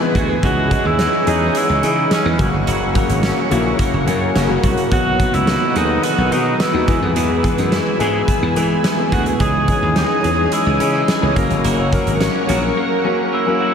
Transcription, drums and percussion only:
0.15 kick, closed hi-hat
0.43 kick, closed hi-hat
0.71 kick, closed hi-hat
0.99 snare, closed hi-hat
1.27 closed hi-hat
1.55 closed hi-hat
1.83 closed hi-hat
2.11 snare, closed hi-hat
2.39 kick, closed hi-hat
2.67 closed hi-hat
2.95 kick, closed hi-hat
3.10 closed hi-hat
3.23 snare, closed hi-hat
3.51 closed hi-hat
3.79 kick, closed hi-hat
4.08 closed hi-hat
4.36 snare, closed hi-hat
4.63 kick, closed hi-hat
4.78 closed hi-hat
4.92 kick, closed hi-hat
5.20 kick, closed hi-hat
5.34 closed hi-hat
5.47 snare, closed hi-hat
5.76 closed hi-hat
6.03 closed hi-hat
6.32 closed hi-hat
6.60 snare, closed hi-hat
6.88 kick, closed hi-hat
7.16 closed hi-hat
7.44 kick, closed hi-hat
7.58 closed hi-hat
7.72 snare, closed hi-hat
8.00 closed hi-hat
8.28 kick, closed hi-hat
8.56 closed hi-hat
8.84 snare, closed hi-hat
9.12 kick, closed hi-hat
9.26 closed hi-hat
9.40 kick, closed hi-hat
9.68 kick, closed hi-hat
9.96 snare, closed hi-hat
10.24 closed hi-hat
10.52 closed hi-hat
10.80 closed hi-hat
11.08 snare, closed hi-hat
11.36 kick, closed hi-hat
11.50 closed hi-hat
11.64 closed hi-hat
11.93 kick, closed hi-hat
12.07 closed hi-hat
12.21 snare, closed hi-hat
12.49 closed hi-hat

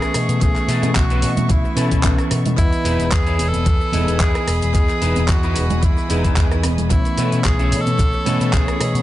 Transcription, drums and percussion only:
0.02 cross-stick, closed hi-hat, cabasa, shaker
0.14 cross-stick, open hi-hat, shaker
0.29 closed hi-hat, cabasa, shaker
0.41 kick, closed hi-hat, cabasa, shaker
0.56 clap, closed hi-hat, cabasa, shaker
0.69 open hi-hat, shaker
0.83 closed hi-hat, high conga, cabasa, shaker
0.95 kick, clap, closed hi-hat, cabasa, shaker
1.10 closed hi-hat, cabasa, shaker
1.22 open hi-hat, muted conga, shaker
1.37 closed hi-hat, high conga, low conga, cabasa, shaker
1.49 kick, closed hi-hat, cabasa, shaker
1.65 cabasa
1.77 open hi-hat, shaker
1.91 kick, closed hi-hat, cabasa, shaker
2.03 kick, clap, closed hi-hat, cabasa, shaker
2.18 cross-stick, closed hi-hat, cabasa, shaker
2.31 cross-stick, open hi-hat, muted conga, high conga, shaker
2.46 closed hi-hat, low conga, cabasa, shaker
2.58 kick, closed hi-hat, cabasa, shaker
2.73 closed hi-hat, cabasa, shaker
2.85 open hi-hat, shaker
3.00 closed hi-hat, cabasa, shaker
3.12 kick, clap, closed hi-hat, cabasa, shaker
3.27 closed hi-hat, cabasa, shaker
3.39 open hi-hat, muted conga, shaker
3.54 closed hi-hat, high conga, cabasa, shaker
3.66 kick, closed hi-hat, cabasa, shaker
3.81 cabasa
3.92 open hi-hat, high conga, low conga, shaker
4.08 closed hi-hat, cabasa, shaker
4.20 kick, clap, closed hi-hat, cabasa, shaker
4.34 cross-stick, closed hi-hat, cabasa, shaker
4.48 cross-stick, open hi-hat, shaker
4.61 closed hi-hat, cabasa, shaker
4.74 kick, closed hi-hat, cabasa, shaker
4.88 clap, closed hi-hat, cabasa, shaker
5.02 open hi-hat, shaker
5.16 closed hi-hat, high conga, cabasa, shaker
5.28 kick, clap, closed hi-hat, cabasa, shaker
5.43 closed hi-hat, cabasa, shaker
5.55 open hi-hat, muted conga, shaker
5.70 closed hi-hat, high conga, low conga, cabasa, shaker
5.83 kick, closed hi-hat, cabasa, shaker
5.97 cabasa, shaker
6.10 open hi-hat, shaker
6.24 kick, closed hi-hat, cabasa, shaker
6.36 kick, clap, closed hi-hat, cabasa, shaker
6.51 cross-stick, closed hi-hat, cabasa, shaker
6.63 cross-stick, open hi-hat, muted conga, high conga, shaker
6.78 closed hi-hat, low conga, cabasa, shaker
6.90 kick, closed hi-hat, cabasa, shaker
7.05 closed hi-hat, cabasa, shaker
7.18 open hi-hat, shaker
7.32 closed hi-hat, cabasa, shaker
7.44 kick, clap, closed hi-hat, cabasa, shaker
7.59 closed hi-hat, cabasa, shaker
7.72 open hi-hat, muted conga, shaker
7.86 closed hi-hat, high conga, cabasa, shaker
7.98 kick, closed hi-hat, cabasa, shaker
8.13 cabasa
8.26 open hi-hat, high conga, low conga, shaker
8.41 closed hi-hat, cabasa, shaker
8.53 kick, clap, closed hi-hat, cabasa, shaker
8.68 cross-stick, closed hi-hat, cabasa, shaker
8.81 cross-stick, open hi-hat, shaker
8.95 closed hi-hat, cabasa, shaker

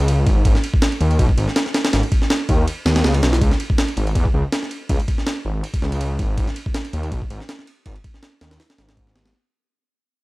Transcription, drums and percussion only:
0.08 ride
0.27 kick, ride
0.45 kick, ride
0.55 snare
0.64 ride
0.74 kick
0.82 snare, ride
0.92 ride
1.01 ride
1.11 ride
1.19 kick, ride
1.29 kick
1.38 ride
1.48 snare
1.56 snare, ride
1.66 snare
1.74 snare, ride
1.85 snare, ride
1.93 snare, ride
2.03 ride
2.12 kick, ride
2.22 snare
2.30 snare, ride
2.49 kick, ride
2.67 ride
2.86 snare, ride
2.96 snare, ride
3.04 snare, ride
3.14 ride
3.23 snare, ride
3.33 snare
3.41 kick, ride
3.51 snare
3.60 ride
3.70 kick
3.78 snare, ride
3.88 ride
3.97 ride
4.07 ride
4.15 kick, ride
4.25 kick
4.52 snare, ride
4.63 snare
4.71 ride
4.89 kick, ride
4.99 ride
5.08 kick, ride
5.18 snare
5.27 snare, ride
5.64 ride
5.74 kick, ride
5.82 snare
5.92 ride
6.01 ride
6.19 kick, ride
6.38 kick, ride
6.47 snare
6.56 ride
6.66 kick
6.74 snare, ride
6.85 ride
6.93 ride
7.03 ride
7.12 kick, ride
7.22 kick
7.30 ride
7.40 snare
7.49 snare, ride
7.59 snare
7.67 ride
7.86 kick, ride
7.96 ride
8.04 kick, ride
8.14 snare
8.23 snare, ride
8.41 snare, ride
8.51 snare, ride
8.60 snare, ride
8.70 snare, ride
8.78 snare, ride
8.89 snare, ride
8.97 kick, ride
9.07 snare
9.16 snare, ride
9.26 snare, ride

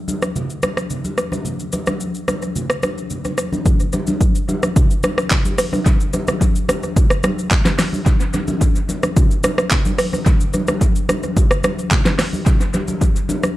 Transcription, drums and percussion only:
0.08 high conga, shaker
0.22 cross-stick, shaker
0.36 low conga, shaker
0.50 shaker
0.62 cross-stick, high conga, shaker
0.77 cross-stick, shaker
0.90 low conga, shaker
1.05 high conga, shaker
1.18 cross-stick, shaker
1.32 high conga, shaker
1.45 low conga, shaker
1.59 shaker
1.72 high conga, shaker
1.86 cross-stick, high conga, shaker
2.00 shaker
2.15 shaker
2.28 cross-stick, high conga, shaker
2.42 shaker
2.56 low conga, shaker
2.70 cross-stick, shaker
2.83 cross-stick, high conga, shaker
2.98 shaker
3.10 low conga, shaker
3.25 high conga, shaker
3.38 cross-stick, shaker
3.53 high conga, shaker
3.65 kick, low conga, shaker
3.80 shaker
3.93 high conga, shaker
4.07 high conga, shaker
4.21 kick, shaker
4.35 shaker
4.49 high conga, shaker
4.63 cross-stick, high conga, shaker
4.76 kick, low conga, shaker
4.91 shaker
5.03 cross-stick, high conga, shaker
5.18 cross-stick, shaker
5.30 kick, clap, low conga, shaker
5.45 high conga, shaker
5.58 cross-stick, open hi-hat, shaker
5.73 high conga, shaker
5.85 kick, low conga, shaker
6.00 shaker
6.13 high conga, shaker
6.27 cross-stick, high conga, shaker
6.41 kick, shaker
6.56 shaker
6.69 cross-stick, high conga, shaker
6.83 high conga, shaker
6.96 kick, low conga, shaker
7.10 cross-stick, shaker
7.23 cross-stick, high conga, shaker
7.39 shaker
7.51 kick, clap, low conga, shaker
7.65 snare, high conga, shaker
7.79 cross-stick, snare, open hi-hat, shaker
7.93 high conga, shaker
8.06 kick, low conga, shaker
8.20 shaker
8.33 high conga, shaker
8.48 high conga, shaker
8.61 kick, shaker
8.76 shaker
8.89 high conga, shaker
9.03 cross-stick, high conga, shaker
9.16 kick, low conga, shaker
9.31 shaker
9.43 cross-stick, high conga, shaker
9.58 cross-stick, shaker
9.71 kick, clap, low conga, shaker
9.85 high conga, shaker
9.98 cross-stick, open hi-hat, shaker
10.13 high conga, shaker
10.26 kick, low conga, shaker
10.40 shaker
10.53 high conga, shaker
10.67 cross-stick, high conga, shaker
10.81 kick, shaker
10.96 shaker
11.09 cross-stick, high conga, shaker
11.23 high conga, shaker
11.36 kick, low conga, shaker
11.51 cross-stick, shaker
11.64 cross-stick, high conga, shaker
11.79 shaker
11.91 kick, clap, low conga, shaker
12.05 snare, high conga, shaker
12.19 cross-stick, snare, open hi-hat, shaker
12.33 high conga, shaker
12.46 kick, low conga, shaker
12.61 shaker
12.74 high conga, shaker
12.88 high conga, shaker
13.01 kick, shaker
13.16 shaker
13.29 high conga, shaker
13.43 cross-stick, high conga, shaker

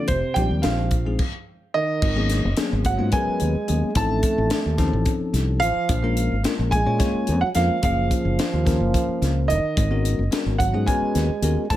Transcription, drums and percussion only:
0.08 kick, closed hi-hat
0.36 kick, closed hi-hat
0.63 snare, closed hi-hat
0.91 kick, closed hi-hat
1.19 kick, crash
2.02 kick, crash
2.30 snare, closed hi-hat
2.57 snare, closed hi-hat
2.85 kick, closed hi-hat
3.12 kick, closed hi-hat
3.40 closed hi-hat
3.68 closed hi-hat
3.95 kick, closed hi-hat
4.23 kick, closed hi-hat
4.50 snare, closed hi-hat
4.78 kick, snare, closed hi-hat
5.06 kick, closed hi-hat
5.34 snare, closed hi-hat
5.62 closed hi-hat
5.89 kick, closed hi-hat
6.17 closed hi-hat
6.44 snare, closed hi-hat
6.72 kick, closed hi-hat
7.00 kick, snare, closed hi-hat
7.27 closed hi-hat
7.55 snare, closed hi-hat
7.83 kick, closed hi-hat
8.11 kick, closed hi-hat
8.39 snare, closed hi-hat
8.67 kick, snare, closed hi-hat
8.94 kick, closed hi-hat
9.22 snare, closed hi-hat
9.50 closed hi-hat
9.77 kick, closed hi-hat
10.05 closed hi-hat
10.32 snare, closed hi-hat
10.60 kick, closed hi-hat
10.88 kick, closed hi-hat
11.15 snare, closed hi-hat
11.43 closed hi-hat
11.70 kick, closed hi-hat

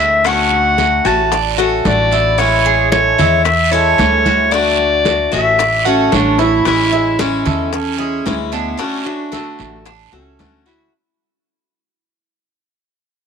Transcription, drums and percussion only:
0.25 high bongo, high conga, long guiro
0.52 high bongo, high conga
0.78 high bongo, high conga, short guiro
1.05 high bongo, high conga, short guiro
1.32 high bongo, high conga, long guiro
1.59 high bongo, high conga
1.85 high bongo, low bongo, high conga, short guiro
2.12 high conga, short guiro
2.38 high bongo, high conga, long guiro
2.65 high bongo, high conga
2.92 high bongo, high conga, short guiro
3.18 high bongo, high conga, low conga, short guiro
3.45 high bongo, high conga, long guiro
3.72 high bongo, high conga
3.98 high bongo, low bongo, high conga, short guiro
4.25 high conga, short guiro
4.52 high bongo, high conga, long guiro
4.79 high bongo, high conga
5.05 high bongo, high conga, short guiro
5.32 high bongo, high conga, short guiro
5.59 high bongo, high conga, long guiro
5.86 high bongo, high conga
6.12 high bongo, high conga, short guiro
6.38 low bongo, high conga, short guiro
6.65 high bongo, high conga, long guiro
6.93 high bongo, high conga
7.19 high bongo, high conga, short guiro
7.46 high bongo, high conga, low conga, short guiro
7.73 high bongo, high conga, long guiro
7.99 high bongo, high conga
8.26 high bongo, low bongo, high conga, short guiro
8.52 short guiro
8.79 high bongo, high conga, long guiro
9.06 high bongo, high conga
9.32 high bongo, high conga, short guiro
9.59 high bongo, high conga, short guiro
9.85 high bongo, high conga, long guiro
10.13 high bongo, high conga
10.39 high bongo, low bongo, high conga, short guiro
10.66 high conga, short guiro

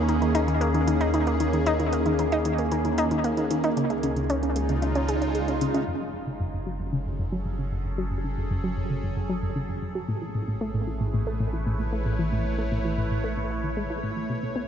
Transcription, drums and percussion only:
0.09 closed hi-hat
0.22 closed hi-hat, low woodblock
0.35 closed hi-hat
0.48 closed hi-hat
0.61 closed hi-hat
0.74 closed hi-hat
0.88 closed hi-hat
1.01 closed hi-hat
1.14 closed hi-hat, low woodblock
1.27 closed hi-hat
1.40 closed hi-hat
1.53 closed hi-hat
1.66 closed hi-hat
1.80 closed hi-hat
1.93 closed hi-hat
2.06 closed hi-hat, low woodblock
2.19 closed hi-hat
2.32 closed hi-hat
2.45 closed hi-hat
2.58 closed hi-hat
2.72 closed hi-hat
2.85 closed hi-hat
2.98 closed hi-hat, low woodblock
3.11 closed hi-hat
3.24 closed hi-hat
3.37 closed hi-hat
3.51 closed hi-hat
3.64 closed hi-hat
3.77 closed hi-hat
3.90 closed hi-hat, low woodblock
4.03 closed hi-hat
4.16 closed hi-hat
4.30 closed hi-hat
4.43 closed hi-hat
4.56 closed hi-hat
4.69 closed hi-hat
4.82 closed hi-hat, low woodblock
4.95 closed hi-hat
5.08 closed hi-hat
5.22 closed hi-hat
5.35 closed hi-hat
5.48 closed hi-hat
5.61 closed hi-hat
5.74 closed hi-hat, low woodblock

